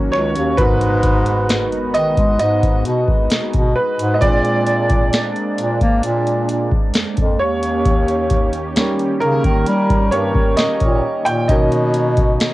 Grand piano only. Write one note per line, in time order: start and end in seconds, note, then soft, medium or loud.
0.00 0.54 F#3 medium
0.00 0.54 A#3 soft
0.00 0.55 C#4 medium
0.12 0.59 C#5 medium
0.57 4.18 B3 medium
0.57 4.18 F#4 medium
0.57 4.18 A#4 medium
0.57 1.45 B4 loud
1.94 2.36 D#5 loud
2.39 3.27 D#5 loud
3.76 4.12 B4 medium
4.14 4.21 D#5 medium
4.21 4.82 G#3 medium
4.21 4.83 C4 medium
4.21 4.83 D4 medium
4.21 6.90 D5 loud
7.39 9.17 C#5 medium
8.76 9.37 G3 medium
8.76 9.37 A#3 medium
8.76 9.37 C#4 medium
9.21 10.15 A#4 loud
10.11 10.54 G3 medium
10.11 10.54 A#3 soft
10.11 10.55 C#4 medium
10.11 10.59 C#5 medium
10.57 11.22 D#5 loud
11.25 11.49 G5 loud
11.48 12.10 D#3 medium
11.48 12.10 A#3 medium
11.48 12.10 C#4 medium
11.48 12.35 D#5 medium